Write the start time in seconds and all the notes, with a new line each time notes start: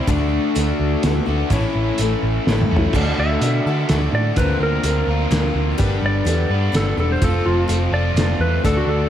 0.07 D2 D3 A3 D4 F#4 A4 D5, kick, closed hi-hat
0.13 F#4
0.55 D2 A3 D4 F#4 A4, closed hi-hat
0.80 D2
1.03 D2 A3 D4 F#4 A4 B4, snare, closed hi-hat
1.26 D2 D4 F#4 A4
1.30 D3 A3
1.49 A1 A2 E3 A3 C#4 E4 A4, kick, closed hi-hat
1.53 A4 C#5
1.75 A1
1.98 A1 A3 C#4 E4, closed hi-hat
2.02 A4
2.23 A1
2.47 A1 A3 C#4 E4 A4, snare
2.62 mid tom
2.70 E2 E3 A3 C#4 E4
2.74 A2, floor tom
2.93 D2 D3 A3 D4 F#4 A4 D5, kick, crash
3.18 D2 E5
3.41 B2 A3 D4 F#4 A4, closed hi-hat
3.66 D3 D4 F#4 A4
3.88 D2 A3 D4 F#4 A4 E5, snare, closed hi-hat
3.93 A4
4.13 A2 D5
4.36 D2 D3 A#3 C4 D4 F4 A#4 B4 C5, kick, closed hi-hat
4.59 D2 A#4
4.84 D2 A#3 C4 F4 A#4, closed hi-hat
5.07 D2 F4 A#4
5.12 D3 D4
5.31 D2 A#3 C4 F4 A#4, snare, closed hi-hat
5.54 D2
5.78 G1 G3 B3 D4 G4 A4, kick, closed hi-hat
5.82 B3 B4
6.02 G1 D5
6.25 E2 B3 D4 G4 A4, closed hi-hat
6.50 G2 B3 B4
6.54 G3 D4
6.72 G1 B3 D4 G4 A4, snare, closed hi-hat
6.76 A4
6.97 E1 D4 G4 A4
7.12 C5
7.21 F1 F3 A3 C4 F4 A4, kick, closed hi-hat
7.26 C5
7.46 F1 F4
7.68 F1 A3 C4 F4 A4, closed hi-hat
7.91 F1 F4 A4 D5
7.96 F3 A3 C4
8.15 F1 A3 C4 F4 A4, snare, closed hi-hat
8.39 E2 B4
8.64 D2 D3 A3 D4 F#4 A4 D5, kick, closed hi-hat
8.77 F#4
8.87 D2 A4